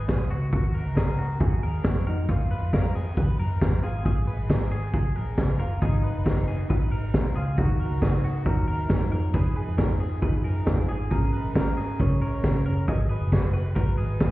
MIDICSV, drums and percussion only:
0, 0, Header, 1, 2, 480
1, 0, Start_track
1, 0, Tempo, 441176
1, 573, Time_signature, 4, 2, 24, 8
1, 15570, End_track
2, 0, Start_track
2, 0, Title_t, "Drums"
2, 88, Note_on_c, 9, 42, 60
2, 91, Note_on_c, 9, 38, 107
2, 96, Note_on_c, 9, 36, 108
2, 197, Note_off_c, 9, 42, 0
2, 200, Note_off_c, 9, 38, 0
2, 205, Note_off_c, 9, 36, 0
2, 336, Note_on_c, 9, 46, 55
2, 445, Note_off_c, 9, 46, 0
2, 572, Note_on_c, 9, 42, 70
2, 574, Note_on_c, 9, 36, 109
2, 681, Note_off_c, 9, 42, 0
2, 683, Note_off_c, 9, 36, 0
2, 813, Note_on_c, 9, 46, 75
2, 922, Note_off_c, 9, 46, 0
2, 1047, Note_on_c, 9, 42, 72
2, 1053, Note_on_c, 9, 36, 91
2, 1054, Note_on_c, 9, 38, 109
2, 1156, Note_off_c, 9, 42, 0
2, 1161, Note_off_c, 9, 36, 0
2, 1163, Note_off_c, 9, 38, 0
2, 1292, Note_on_c, 9, 46, 88
2, 1401, Note_off_c, 9, 46, 0
2, 1523, Note_on_c, 9, 42, 81
2, 1529, Note_on_c, 9, 36, 108
2, 1632, Note_off_c, 9, 42, 0
2, 1638, Note_off_c, 9, 36, 0
2, 1767, Note_on_c, 9, 46, 70
2, 1876, Note_off_c, 9, 46, 0
2, 2000, Note_on_c, 9, 42, 65
2, 2003, Note_on_c, 9, 38, 118
2, 2009, Note_on_c, 9, 36, 106
2, 2109, Note_off_c, 9, 42, 0
2, 2112, Note_off_c, 9, 38, 0
2, 2118, Note_off_c, 9, 36, 0
2, 2246, Note_on_c, 9, 46, 58
2, 2355, Note_off_c, 9, 46, 0
2, 2490, Note_on_c, 9, 36, 108
2, 2490, Note_on_c, 9, 42, 70
2, 2599, Note_off_c, 9, 36, 0
2, 2599, Note_off_c, 9, 42, 0
2, 2732, Note_on_c, 9, 46, 74
2, 2841, Note_off_c, 9, 46, 0
2, 2970, Note_on_c, 9, 42, 71
2, 2971, Note_on_c, 9, 36, 94
2, 2977, Note_on_c, 9, 38, 107
2, 3078, Note_off_c, 9, 42, 0
2, 3080, Note_off_c, 9, 36, 0
2, 3085, Note_off_c, 9, 38, 0
2, 3217, Note_on_c, 9, 46, 94
2, 3326, Note_off_c, 9, 46, 0
2, 3450, Note_on_c, 9, 42, 79
2, 3451, Note_on_c, 9, 36, 121
2, 3558, Note_off_c, 9, 42, 0
2, 3560, Note_off_c, 9, 36, 0
2, 3695, Note_on_c, 9, 46, 80
2, 3804, Note_off_c, 9, 46, 0
2, 3930, Note_on_c, 9, 42, 65
2, 3933, Note_on_c, 9, 36, 105
2, 3933, Note_on_c, 9, 38, 108
2, 4039, Note_off_c, 9, 42, 0
2, 4041, Note_off_c, 9, 36, 0
2, 4042, Note_off_c, 9, 38, 0
2, 4171, Note_on_c, 9, 46, 51
2, 4280, Note_off_c, 9, 46, 0
2, 4410, Note_on_c, 9, 42, 73
2, 4412, Note_on_c, 9, 36, 107
2, 4519, Note_off_c, 9, 42, 0
2, 4520, Note_off_c, 9, 36, 0
2, 4653, Note_on_c, 9, 46, 72
2, 4762, Note_off_c, 9, 46, 0
2, 4891, Note_on_c, 9, 42, 67
2, 4892, Note_on_c, 9, 36, 92
2, 4898, Note_on_c, 9, 38, 109
2, 5000, Note_off_c, 9, 42, 0
2, 5001, Note_off_c, 9, 36, 0
2, 5007, Note_off_c, 9, 38, 0
2, 5136, Note_on_c, 9, 46, 84
2, 5245, Note_off_c, 9, 46, 0
2, 5370, Note_on_c, 9, 42, 77
2, 5371, Note_on_c, 9, 36, 110
2, 5479, Note_off_c, 9, 42, 0
2, 5480, Note_off_c, 9, 36, 0
2, 5615, Note_on_c, 9, 46, 73
2, 5723, Note_off_c, 9, 46, 0
2, 5846, Note_on_c, 9, 42, 65
2, 5849, Note_on_c, 9, 38, 117
2, 5852, Note_on_c, 9, 36, 108
2, 5955, Note_off_c, 9, 42, 0
2, 5958, Note_off_c, 9, 38, 0
2, 5961, Note_off_c, 9, 36, 0
2, 6096, Note_on_c, 9, 46, 56
2, 6205, Note_off_c, 9, 46, 0
2, 6332, Note_on_c, 9, 36, 112
2, 6333, Note_on_c, 9, 42, 61
2, 6441, Note_off_c, 9, 36, 0
2, 6442, Note_off_c, 9, 42, 0
2, 6572, Note_on_c, 9, 46, 81
2, 6681, Note_off_c, 9, 46, 0
2, 6810, Note_on_c, 9, 42, 69
2, 6811, Note_on_c, 9, 36, 97
2, 6817, Note_on_c, 9, 38, 101
2, 6919, Note_off_c, 9, 42, 0
2, 6920, Note_off_c, 9, 36, 0
2, 6926, Note_off_c, 9, 38, 0
2, 7056, Note_on_c, 9, 46, 84
2, 7165, Note_off_c, 9, 46, 0
2, 7291, Note_on_c, 9, 36, 105
2, 7292, Note_on_c, 9, 42, 75
2, 7400, Note_off_c, 9, 36, 0
2, 7401, Note_off_c, 9, 42, 0
2, 7533, Note_on_c, 9, 46, 80
2, 7642, Note_off_c, 9, 46, 0
2, 7765, Note_on_c, 9, 42, 69
2, 7767, Note_on_c, 9, 38, 106
2, 7770, Note_on_c, 9, 36, 103
2, 7873, Note_off_c, 9, 42, 0
2, 7876, Note_off_c, 9, 38, 0
2, 7879, Note_off_c, 9, 36, 0
2, 8006, Note_on_c, 9, 46, 54
2, 8115, Note_off_c, 9, 46, 0
2, 8245, Note_on_c, 9, 42, 71
2, 8247, Note_on_c, 9, 36, 119
2, 8354, Note_off_c, 9, 42, 0
2, 8356, Note_off_c, 9, 36, 0
2, 8486, Note_on_c, 9, 46, 76
2, 8595, Note_off_c, 9, 46, 0
2, 8720, Note_on_c, 9, 42, 70
2, 8725, Note_on_c, 9, 36, 99
2, 8728, Note_on_c, 9, 38, 98
2, 8829, Note_off_c, 9, 42, 0
2, 8834, Note_off_c, 9, 36, 0
2, 8836, Note_off_c, 9, 38, 0
2, 8964, Note_on_c, 9, 46, 88
2, 9073, Note_off_c, 9, 46, 0
2, 9197, Note_on_c, 9, 42, 77
2, 9203, Note_on_c, 9, 36, 109
2, 9306, Note_off_c, 9, 42, 0
2, 9312, Note_off_c, 9, 36, 0
2, 9445, Note_on_c, 9, 46, 79
2, 9554, Note_off_c, 9, 46, 0
2, 9673, Note_on_c, 9, 42, 64
2, 9676, Note_on_c, 9, 38, 103
2, 9683, Note_on_c, 9, 36, 101
2, 9782, Note_off_c, 9, 42, 0
2, 9785, Note_off_c, 9, 38, 0
2, 9792, Note_off_c, 9, 36, 0
2, 9920, Note_on_c, 9, 46, 61
2, 10029, Note_off_c, 9, 46, 0
2, 10161, Note_on_c, 9, 42, 64
2, 10163, Note_on_c, 9, 36, 117
2, 10269, Note_off_c, 9, 42, 0
2, 10271, Note_off_c, 9, 36, 0
2, 10407, Note_on_c, 9, 46, 77
2, 10516, Note_off_c, 9, 46, 0
2, 10640, Note_on_c, 9, 42, 70
2, 10644, Note_on_c, 9, 36, 104
2, 10647, Note_on_c, 9, 38, 103
2, 10749, Note_off_c, 9, 42, 0
2, 10753, Note_off_c, 9, 36, 0
2, 10756, Note_off_c, 9, 38, 0
2, 10885, Note_on_c, 9, 46, 87
2, 10994, Note_off_c, 9, 46, 0
2, 11121, Note_on_c, 9, 42, 79
2, 11123, Note_on_c, 9, 36, 108
2, 11229, Note_off_c, 9, 42, 0
2, 11232, Note_off_c, 9, 36, 0
2, 11368, Note_on_c, 9, 46, 75
2, 11477, Note_off_c, 9, 46, 0
2, 11603, Note_on_c, 9, 38, 113
2, 11607, Note_on_c, 9, 36, 111
2, 11711, Note_off_c, 9, 38, 0
2, 11716, Note_off_c, 9, 36, 0
2, 11850, Note_on_c, 9, 46, 52
2, 11959, Note_off_c, 9, 46, 0
2, 12090, Note_on_c, 9, 36, 107
2, 12092, Note_on_c, 9, 42, 70
2, 12199, Note_off_c, 9, 36, 0
2, 12201, Note_off_c, 9, 42, 0
2, 12333, Note_on_c, 9, 46, 81
2, 12441, Note_off_c, 9, 46, 0
2, 12569, Note_on_c, 9, 42, 69
2, 12572, Note_on_c, 9, 36, 100
2, 12576, Note_on_c, 9, 38, 101
2, 12678, Note_off_c, 9, 42, 0
2, 12681, Note_off_c, 9, 36, 0
2, 12685, Note_off_c, 9, 38, 0
2, 12819, Note_on_c, 9, 46, 92
2, 12927, Note_off_c, 9, 46, 0
2, 13051, Note_on_c, 9, 42, 79
2, 13053, Note_on_c, 9, 36, 111
2, 13159, Note_off_c, 9, 42, 0
2, 13162, Note_off_c, 9, 36, 0
2, 13296, Note_on_c, 9, 46, 79
2, 13405, Note_off_c, 9, 46, 0
2, 13528, Note_on_c, 9, 42, 61
2, 13531, Note_on_c, 9, 38, 111
2, 13534, Note_on_c, 9, 36, 107
2, 13637, Note_off_c, 9, 42, 0
2, 13640, Note_off_c, 9, 38, 0
2, 13643, Note_off_c, 9, 36, 0
2, 13777, Note_on_c, 9, 46, 52
2, 13886, Note_off_c, 9, 46, 0
2, 14015, Note_on_c, 9, 36, 108
2, 14015, Note_on_c, 9, 42, 69
2, 14124, Note_off_c, 9, 36, 0
2, 14124, Note_off_c, 9, 42, 0
2, 14256, Note_on_c, 9, 46, 69
2, 14365, Note_off_c, 9, 46, 0
2, 14494, Note_on_c, 9, 42, 73
2, 14495, Note_on_c, 9, 36, 89
2, 14501, Note_on_c, 9, 38, 100
2, 14603, Note_off_c, 9, 42, 0
2, 14604, Note_off_c, 9, 36, 0
2, 14610, Note_off_c, 9, 38, 0
2, 14739, Note_on_c, 9, 46, 84
2, 14848, Note_off_c, 9, 46, 0
2, 14969, Note_on_c, 9, 42, 72
2, 14973, Note_on_c, 9, 36, 110
2, 15078, Note_off_c, 9, 42, 0
2, 15082, Note_off_c, 9, 36, 0
2, 15222, Note_on_c, 9, 46, 79
2, 15330, Note_off_c, 9, 46, 0
2, 15454, Note_on_c, 9, 38, 116
2, 15455, Note_on_c, 9, 36, 115
2, 15563, Note_off_c, 9, 38, 0
2, 15564, Note_off_c, 9, 36, 0
2, 15570, End_track
0, 0, End_of_file